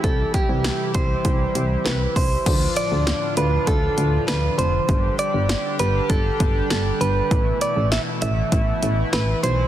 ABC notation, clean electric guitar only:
X:1
M:4/4
L:1/8
Q:1/4=99
K:Ddor
V:1 name="Clean electric guitar"
A G2 c3 B c- | c d2 B A2 B c- | c d2 B A2 A B- | B d e e3 B c |]